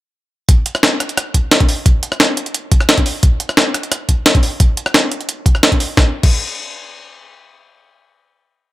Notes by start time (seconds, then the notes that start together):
0.49 kick, closed hi-hat
0.66 closed hi-hat
0.75 cross-stick
0.83 snare, closed hi-hat
1.00 cross-stick, closed hi-hat
1.09 closed hi-hat
1.17 cross-stick, closed hi-hat
1.34 kick, closed hi-hat
1.51 snare, closed hi-hat
1.60 kick, closed hi-hat
1.69 open hi-hat
1.86 kick, closed hi-hat
2.03 closed hi-hat
2.12 cross-stick
2.20 snare, closed hi-hat
2.37 closed hi-hat
2.46 closed hi-hat
2.54 closed hi-hat
2.72 kick, closed hi-hat
2.80 cross-stick
2.89 snare, closed hi-hat
2.98 kick, closed hi-hat
3.06 open hi-hat
3.23 kick, closed hi-hat
3.40 closed hi-hat
3.49 cross-stick
3.57 snare, closed hi-hat
3.74 cross-stick, closed hi-hat
3.83 closed hi-hat
3.92 cross-stick, closed hi-hat
4.09 kick, closed hi-hat
4.26 snare, closed hi-hat
4.35 kick, closed hi-hat
4.43 open hi-hat
4.60 kick, closed hi-hat
4.77 closed hi-hat
4.86 cross-stick
4.94 snare, closed hi-hat
5.12 closed hi-hat
5.21 closed hi-hat
5.29 closed hi-hat
5.46 kick, closed hi-hat
5.55 cross-stick
5.63 snare, closed hi-hat
5.72 kick, closed hi-hat
5.80 open hi-hat
5.97 kick, snare
6.23 kick, crash